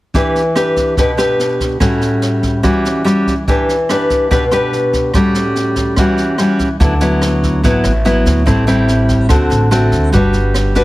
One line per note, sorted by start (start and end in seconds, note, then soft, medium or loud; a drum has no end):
0.14 0.96 E3 medium
0.14 0.41 D4 soft
0.14 0.41 G4 soft
0.14 0.42 B4 soft
0.14 kick soft
0.14 snare soft
0.35 snare soft
0.56 0.94 D4 soft
0.56 0.94 G4 soft
0.56 0.94 B4 medium
0.56 cross-stick soft
0.56 snare soft
0.76 kick soft
0.76 snare soft
0.97 1.79 B2 medium
0.97 1.10 D4 soft
0.97 1.10 G4 soft
0.97 1.10 B4 medium
0.97 kick soft
0.97 snare soft
1.17 1.77 D4 soft
1.17 1.77 G4 medium
1.17 1.77 B4 medium
1.17 cross-stick soft
1.17 snare soft
1.39 snare soft
1.60 kick soft
1.60 snare soft
1.80 2.62 A2 medium
1.80 2.61 G3 soft
1.80 2.61 C#4 soft
1.80 2.61 F#4 soft
1.80 kick soft
1.80 cross-stick soft
1.80 snare soft
2.01 snare soft
2.22 snare soft
2.43 kick soft
2.43 snare soft
2.63 3.45 E3 medium
2.63 3.02 G3 medium
2.63 3.02 C#4 soft
2.63 3.02 F#4 medium
2.63 kick soft
2.63 cross-stick soft
2.63 snare soft
2.85 snare soft
3.04 3.33 G3 soft
3.04 3.33 C#4 soft
3.04 3.34 F#4 medium
3.04 cross-stick soft
3.04 snare soft
3.27 kick soft
3.27 snare soft
3.48 4.29 E3 medium
3.48 3.75 D4 soft
3.48 3.75 G4 soft
3.48 3.75 B4 soft
3.48 kick soft
3.48 snare soft
3.69 snare soft
3.89 4.28 D4 soft
3.89 4.28 G4 soft
3.89 4.28 B4 medium
3.89 cross-stick soft
3.89 snare soft
4.10 kick soft
4.10 snare soft
4.31 5.12 B2 medium
4.31 4.43 D4 soft
4.31 4.43 G4 medium
4.31 4.43 B4 medium
4.31 kick medium
4.31 snare soft
4.51 5.11 D4 soft
4.51 5.11 G4 soft
4.51 5.11 B4 medium
4.51 cross-stick medium
4.51 snare soft
4.73 snare soft
4.93 kick soft
4.93 snare soft
5.14 5.96 A2 medium
5.14 5.94 G3 medium
5.14 5.95 C#4 soft
5.14 5.95 F#4 soft
5.14 kick soft
5.14 cross-stick soft
5.14 snare soft
5.34 snare soft
5.56 snare soft
5.76 kick soft
5.76 snare soft
5.96 6.79 E3 medium
5.96 6.36 G3 soft
5.96 6.36 C#4 soft
5.96 6.36 F#4 soft
5.96 kick soft
5.96 cross-stick medium
5.96 snare soft
6.17 snare soft
6.38 6.67 G3 soft
6.38 6.67 C#4 soft
6.38 6.67 F#4 soft
6.38 cross-stick medium
6.38 snare soft
6.59 kick soft
6.59 snare soft
6.80 7.60 D2 medium
6.80 7.62 D3 soft
6.80 6.93 F#3 soft
6.80 6.93 B3 soft
6.80 6.93 E4 medium
6.80 kick soft
6.80 snare soft
7.01 7.60 F#3 medium
7.01 7.61 B3 medium
7.01 7.61 E4 medium
7.01 snare soft
7.21 cross-stick soft
7.21 snare soft
7.43 kick soft
7.43 snare soft
7.63 7.83 A1 medium
7.63 8.45 A2 medium
7.63 7.91 F#3 medium
7.63 7.91 B3 soft
7.63 7.91 E4 medium
7.63 kick medium
7.63 snare soft
7.84 8.23 A1 medium
7.84 cross-stick medium
7.84 snare soft
8.05 8.45 F#3 soft
8.05 8.45 B3 medium
8.05 8.46 E4 medium
8.05 snare soft
8.25 8.45 D2 medium
8.25 kick soft
8.25 snare soft
8.46 9.26 A1 medium
8.46 9.28 A2 soft
8.46 8.64 G3 soft
8.46 8.64 C4 soft
8.46 8.64 E4 medium
8.46 kick soft
8.46 cross-stick medium
8.46 snare soft
8.67 9.27 G3 medium
8.67 9.27 C4 medium
8.67 9.27 E4 medium
8.67 snare soft
8.88 snare soft
9.09 kick soft
9.09 snare soft
9.29 9.49 D2 medium
9.29 10.11 D3 medium
9.29 9.68 A3 medium
9.29 9.68 C4 medium
9.29 9.69 F#4 medium
9.29 kick medium
9.29 cross-stick medium
9.29 snare soft
9.50 9.89 A1 medium
9.50 snare soft
9.71 10.11 A3 medium
9.71 10.12 C4 soft
9.71 10.12 F#4 medium
9.71 cross-stick medium
9.71 snare soft
9.92 10.12 D2 medium
9.92 kick soft
9.92 snare soft
10.12 10.84 G1 medium
10.12 10.84 G3 soft
10.12 10.73 D4 soft
10.12 10.73 F#4 medium
10.12 10.73 B4 medium
10.12 kick medium
10.12 snare soft
10.33 snare soft
10.54 cross-stick soft
10.54 snare soft
10.75 10.84 D4 medium
10.75 10.84 F#4 medium
10.75 10.84 B4 medium
10.75 kick soft
10.75 snare soft